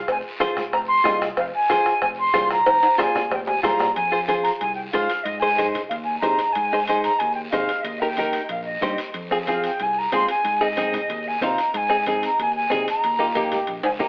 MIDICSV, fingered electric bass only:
0, 0, Header, 1, 2, 480
1, 0, Start_track
1, 0, Key_signature, -4, "minor"
1, 0, Tempo, 323625
1, 125, Time_signature, 4, 2, 24, 8
1, 20889, End_track
2, 0, Start_track
2, 0, Title_t, "Fingered electric bass"
2, 0, Program_c, 0, 33
2, 122, Note_on_c, 0, 29, 94
2, 315, Note_off_c, 0, 29, 0
2, 1081, Note_on_c, 0, 29, 90
2, 1465, Note_off_c, 0, 29, 0
2, 1548, Note_on_c, 0, 36, 96
2, 1937, Note_off_c, 0, 36, 0
2, 2037, Note_on_c, 0, 29, 93
2, 2231, Note_off_c, 0, 29, 0
2, 2996, Note_on_c, 0, 29, 89
2, 3381, Note_off_c, 0, 29, 0
2, 3468, Note_on_c, 0, 36, 95
2, 3857, Note_off_c, 0, 36, 0
2, 3957, Note_on_c, 0, 29, 90
2, 4150, Note_off_c, 0, 29, 0
2, 4919, Note_on_c, 0, 29, 86
2, 5303, Note_off_c, 0, 29, 0
2, 5381, Note_on_c, 0, 36, 90
2, 5773, Note_off_c, 0, 36, 0
2, 5877, Note_on_c, 0, 41, 82
2, 6648, Note_off_c, 0, 41, 0
2, 6842, Note_on_c, 0, 36, 89
2, 7227, Note_off_c, 0, 36, 0
2, 7315, Note_on_c, 0, 44, 95
2, 7511, Note_off_c, 0, 44, 0
2, 7789, Note_on_c, 0, 44, 86
2, 8565, Note_off_c, 0, 44, 0
2, 8760, Note_on_c, 0, 39, 90
2, 9148, Note_off_c, 0, 39, 0
2, 9248, Note_on_c, 0, 48, 91
2, 9440, Note_off_c, 0, 48, 0
2, 9726, Note_on_c, 0, 44, 86
2, 10497, Note_off_c, 0, 44, 0
2, 10698, Note_on_c, 0, 39, 87
2, 11080, Note_off_c, 0, 39, 0
2, 11167, Note_on_c, 0, 48, 91
2, 11361, Note_off_c, 0, 48, 0
2, 11632, Note_on_c, 0, 39, 83
2, 12409, Note_off_c, 0, 39, 0
2, 12595, Note_on_c, 0, 34, 87
2, 12987, Note_off_c, 0, 34, 0
2, 13072, Note_on_c, 0, 43, 92
2, 13273, Note_off_c, 0, 43, 0
2, 13561, Note_on_c, 0, 41, 89
2, 14335, Note_off_c, 0, 41, 0
2, 14541, Note_on_c, 0, 36, 86
2, 14923, Note_off_c, 0, 36, 0
2, 15009, Note_on_c, 0, 44, 89
2, 15204, Note_off_c, 0, 44, 0
2, 15489, Note_on_c, 0, 44, 89
2, 16259, Note_off_c, 0, 44, 0
2, 16460, Note_on_c, 0, 39, 85
2, 16842, Note_off_c, 0, 39, 0
2, 16934, Note_on_c, 0, 48, 97
2, 17126, Note_off_c, 0, 48, 0
2, 17412, Note_on_c, 0, 44, 95
2, 18180, Note_off_c, 0, 44, 0
2, 18382, Note_on_c, 0, 39, 87
2, 18762, Note_off_c, 0, 39, 0
2, 18863, Note_on_c, 0, 48, 89
2, 19051, Note_off_c, 0, 48, 0
2, 19347, Note_on_c, 0, 39, 92
2, 20108, Note_off_c, 0, 39, 0
2, 20296, Note_on_c, 0, 34, 84
2, 20485, Note_off_c, 0, 34, 0
2, 20537, Note_on_c, 0, 37, 77
2, 20750, Note_off_c, 0, 37, 0
2, 20768, Note_on_c, 0, 39, 71
2, 20889, Note_off_c, 0, 39, 0
2, 20889, End_track
0, 0, End_of_file